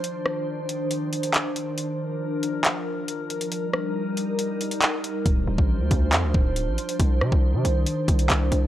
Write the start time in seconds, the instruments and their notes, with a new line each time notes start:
Already playing: ambient pad D4 C5
0.04 ambient pad D#3, closed hi-hat
0.26 cross-stick
0.69 closed hi-hat
0.91 closed hi-hat
1.13 closed hi-hat
1.23 closed hi-hat
1.34 clap, closed hi-hat
1.56 closed hi-hat
1.78 ambient pad F3 A#4, closed hi-hat
2.43 closed hi-hat
2.65 clap, closed hi-hat
3.08 closed hi-hat
3.30 closed hi-hat
3.41 closed hi-hat
3.52 ambient pad G3 D#4, closed hi-hat
3.73 cross-stick
4.17 closed hi-hat
4.39 closed hi-hat
4.61 closed hi-hat
4.71 closed hi-hat
4.82 clap, closed hi-hat
5.04 closed hi-hat
5.26 808-style bass D1, ambient pad F3 D4 C5, kick, closed hi-hat
5.47 808-style bass D1
5.58 808-style bass A1, kick
5.80 808-style bass D2
5.91 808-style bass D2, kick, closed hi-hat
6.13 808-style bass F2, clap, closed hi-hat
6.23 808-style bass D2
6.34 808-style bass D1, kick
6.56 closed hi-hat
6.67 808-style bass A1
6.78 closed hi-hat
6.89 closed hi-hat
7.00 808-style bass C2, ambient pad D#3, kick, closed hi-hat
7.21 808-style bass C3, cross-stick
7.32 808-style bass C2, kick
7.54 808-style bass C3
7.65 808-style bass C2, closed hi-hat
7.87 closed hi-hat
8.08 808-style bass C2, kick, closed hi-hat
8.19 closed hi-hat
8.30 808-style bass C2, clap, closed hi-hat
8.52 808-style bass C2, closed hi-hat